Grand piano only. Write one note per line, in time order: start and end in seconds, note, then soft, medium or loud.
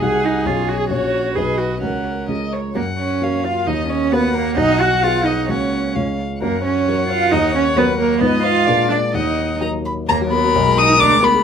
0.01 0.44 C2 soft
0.01 0.42 D#4 soft
0.01 0.42 F#4 soft
0.01 0.42 G#4 soft
0.45 0.89 B1 medium
0.45 0.86 C#4 soft
0.45 0.87 G#4 soft
0.45 0.87 C#5 soft
0.89 1.34 A#1 soft
0.89 1.32 C#4 soft
0.89 1.32 F#4 soft
0.89 1.32 C#5 soft
1.36 1.81 B1 soft
1.36 1.78 D#4 soft
1.36 1.79 F#4 soft
1.36 1.79 B4 soft
1.82 2.27 C#2 soft
1.82 2.25 C#4 soft
1.82 2.26 F#4 soft
1.82 2.26 A#4 soft
2.28 2.74 C#2 soft
2.28 2.72 C#4 soft
2.28 2.72 F4 soft
2.28 2.72 G#4 soft
2.75 3.20 F#2 soft
3.22 3.63 A#3 soft
3.22 3.63 F#4 soft
3.22 3.64 A#4 soft
3.67 4.11 D#2 medium
4.12 4.54 A#3 soft
4.12 4.53 F#4 soft
4.12 4.54 A#4 medium
4.57 5.01 B1 medium
5.03 5.45 B3 soft
5.03 5.45 F#4 soft
5.03 5.45 G#4 soft
5.49 5.94 C#2 soft
5.49 5.91 A#3 soft
5.49 5.92 F#4 soft
5.49 5.92 C#5 soft
5.96 6.41 C#2 soft
5.96 6.38 G#3 soft
5.96 6.38 F4 soft
5.96 6.38 C#5 soft
6.42 6.86 F#2 medium
6.88 7.29 F#3 soft
6.88 7.29 F#4 soft
6.88 7.29 A#4 medium
7.32 7.76 D#2 medium
7.77 8.18 F#3 medium
7.77 8.18 F#4 medium
7.77 8.18 A#4 medium
8.21 8.66 G#2 medium
8.21 8.63 F3 medium
8.21 8.63 D#4 medium
8.21 8.63 B4 medium
8.67 9.13 A#2 medium
8.67 9.10 G#3 soft
8.67 9.10 D4 soft
8.67 9.11 A#4 soft
9.14 9.60 D#2 soft
9.61 10.05 F#3 soft
9.61 10.05 D#4 soft
9.61 10.05 A#4 soft
10.09 10.53 D#2 medium
10.21 10.39 F#3 medium
10.32 10.50 A#4 medium
10.44 10.55 F#4 medium
10.56 11.00 B1 medium
10.67 10.85 G#3 medium
10.78 10.96 G#4 medium
10.89 11.01 D#4 medium
11.01 11.43 D2 medium
11.13 11.31 G#3 medium
11.23 11.41 A#4 medium
11.34 11.43 G#4 medium